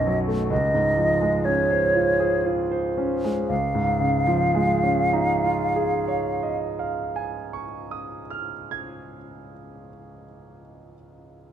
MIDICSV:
0, 0, Header, 1, 3, 480
1, 0, Start_track
1, 0, Key_signature, -5, "major"
1, 0, Tempo, 918836
1, 262, Time_signature, 3, 2, 24, 8
1, 753, Tempo, 1027397
1, 1713, Tempo, 983607
1, 2673, Tempo, 1006711
1, 4113, Tempo, 983607
1, 5598, End_track
2, 0, Start_track
2, 0, Title_t, "Flute"
2, 0, Program_c, 0, 73
2, 0, Note_on_c, 0, 75, 50
2, 101, Note_off_c, 0, 75, 0
2, 267, Note_on_c, 0, 75, 56
2, 757, Note_on_c, 0, 73, 42
2, 764, Note_off_c, 0, 75, 0
2, 1225, Note_off_c, 0, 73, 0
2, 1706, Note_on_c, 0, 77, 44
2, 3197, Note_off_c, 0, 77, 0
2, 5598, End_track
3, 0, Start_track
3, 0, Title_t, "Grand piano"
3, 0, Program_c, 1, 0
3, 0, Control_c, 1, 64, 127
3, 0, Note_on_c, 1, 35, 38
3, 0, Note_on_c, 1, 42, 30
3, 35, Note_on_c, 1, 54, 30
3, 98, Note_off_c, 1, 42, 0
3, 146, Note_on_c, 1, 57, 30
3, 217, Note_off_c, 1, 54, 0
3, 247, Note_off_c, 1, 35, 0
3, 262, Note_off_c, 1, 57, 0
3, 263, Note_on_c, 1, 37, 37
3, 275, Control_c, 1, 64, 0
3, 378, Control_c, 1, 64, 127
3, 388, Note_on_c, 1, 44, 28
3, 507, Note_on_c, 1, 53, 30
3, 580, Note_off_c, 1, 44, 0
3, 634, Note_on_c, 1, 56, 31
3, 704, Note_off_c, 1, 53, 0
3, 760, Note_on_c, 1, 61, 31
3, 825, Note_off_c, 1, 56, 0
3, 876, Note_on_c, 1, 72, 28
3, 941, Note_off_c, 1, 61, 0
3, 989, Note_on_c, 1, 65, 33
3, 1060, Note_off_c, 1, 72, 0
3, 1107, Note_on_c, 1, 68, 32
3, 1177, Note_off_c, 1, 65, 0
3, 1225, Note_on_c, 1, 65, 28
3, 1298, Note_off_c, 1, 68, 0
3, 1347, Note_on_c, 1, 72, 28
3, 1420, Note_off_c, 1, 65, 0
3, 1471, Note_on_c, 1, 61, 30
3, 1546, Note_off_c, 1, 72, 0
3, 1596, Note_on_c, 1, 56, 28
3, 1666, Note_off_c, 1, 61, 0
3, 1695, Note_off_c, 1, 37, 0
3, 1712, Note_on_c, 1, 37, 35
3, 1714, Note_off_c, 1, 56, 0
3, 1725, Control_c, 1, 64, 0
3, 1835, Note_on_c, 1, 44, 36
3, 1843, Control_c, 1, 64, 127
3, 1961, Note_on_c, 1, 49, 36
3, 2090, Note_on_c, 1, 53, 36
3, 2226, Note_on_c, 1, 56, 34
3, 2366, Note_on_c, 1, 61, 29
3, 2511, Note_on_c, 1, 63, 34
3, 2660, Note_on_c, 1, 65, 31
3, 2814, Note_on_c, 1, 68, 33
3, 2967, Note_on_c, 1, 73, 29
3, 3134, Note_on_c, 1, 75, 31
3, 3203, Note_off_c, 1, 37, 0
3, 3306, Note_on_c, 1, 77, 31
3, 3324, Note_off_c, 1, 44, 0
3, 3446, Note_off_c, 1, 49, 0
3, 3481, Note_on_c, 1, 80, 30
3, 3572, Note_off_c, 1, 53, 0
3, 3660, Note_on_c, 1, 85, 28
3, 3706, Note_off_c, 1, 56, 0
3, 3841, Note_on_c, 1, 87, 26
3, 3842, Note_off_c, 1, 61, 0
3, 3984, Note_off_c, 1, 63, 0
3, 4028, Note_on_c, 1, 89, 27
3, 4130, Note_off_c, 1, 65, 0
3, 4225, Note_on_c, 1, 92, 25
3, 4288, Note_off_c, 1, 68, 0
3, 4444, Note_off_c, 1, 73, 0
3, 4614, Note_off_c, 1, 75, 0
3, 4791, Note_off_c, 1, 77, 0
3, 4970, Note_off_c, 1, 80, 0
3, 5153, Note_off_c, 1, 85, 0
3, 5311, Note_off_c, 1, 87, 0
3, 5311, Note_off_c, 1, 89, 0
3, 5311, Note_off_c, 1, 92, 0
3, 5598, End_track
0, 0, End_of_file